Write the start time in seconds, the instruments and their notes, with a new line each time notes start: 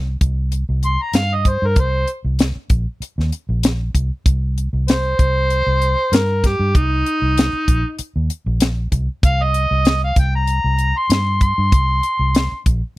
Already playing: fingered electric bass C2
0.21 fingered electric bass C2, kick, closed hi-hat
0.52 closed hi-hat
0.69 fingered electric bass C2
0.83 harmonica C6, closed hi-hat
1.02 harmonica A#5
1.13 fingered electric bass G2, harmonica F5, snare, closed hi-hat
1.34 harmonica D#5
1.45 harmonica C5, kick, closed hi-hat
1.62 fingered electric bass G2
1.66 harmonica A#4
1.76 fingered electric bass C2, harmonica C5, kick, closed hi-hat
2.08 closed hi-hat
2.24 fingered electric bass C2
2.39 snare, closed hi-hat
2.70 fingered electric bass A#1, kick, closed hi-hat
3.00 muted fingered electric bass stroke, closed hi-hat
3.18 fingered electric bass D#2, snare
3.32 closed hi-hat
3.49 fingered electric bass A#1
3.63 snare, closed hi-hat
3.95 fingered electric bass C2, kick, closed hi-hat
4.26 fingered electric bass C2, kick, closed hi-hat
4.58 closed hi-hat
4.73 fingered electric bass C2
4.88 harmonica C5, snare, closed hi-hat
5.19 fingered electric bass C2, kick, closed hi-hat
5.50 closed hi-hat
5.67 fingered electric bass C2
5.82 closed hi-hat
6.12 fingered electric bass G2, harmonica A#4, snare, closed hi-hat
6.44 harmonica G4, kick, snare, closed hi-hat
6.60 fingered electric bass G2
6.75 fingered electric bass C2, harmonica D#4, kick, closed hi-hat
7.06 closed hi-hat
7.22 fingered electric bass C2
7.38 snare, closed hi-hat
7.53 muted fingered electric bass stroke
7.68 fingered electric bass A#1, kick, closed hi-hat
7.99 muted fingered electric bass stroke, closed hi-hat
8.16 fingered electric bass D#2
8.30 closed hi-hat
8.46 fingered electric bass A#1
8.60 snare, closed hi-hat
8.92 fingered electric bass C2, kick, closed hi-hat
9.23 fingered electric bass C2, harmonica F5, kick, closed hi-hat
9.43 harmonica D#5
9.54 closed hi-hat
9.71 fingered electric bass C2
9.85 snare, closed hi-hat
10.04 harmonica F5
10.16 fingered electric bass C2, harmonica G5, kick, closed hi-hat
10.36 harmonica A#5
10.47 closed hi-hat
10.64 fingered electric bass C2
10.79 closed hi-hat
10.98 harmonica C6
11.10 fingered electric bass G2, snare, closed hi-hat
11.41 harmonica C6, kick, closed hi-hat
11.58 fingered electric bass G2
11.72 fingered electric bass C2, kick, closed hi-hat
12.03 closed hi-hat
12.19 fingered electric bass C2
12.35 snare, closed hi-hat
12.52 muted fingered electric bass stroke
12.66 fingered electric bass A#1, kick, closed hi-hat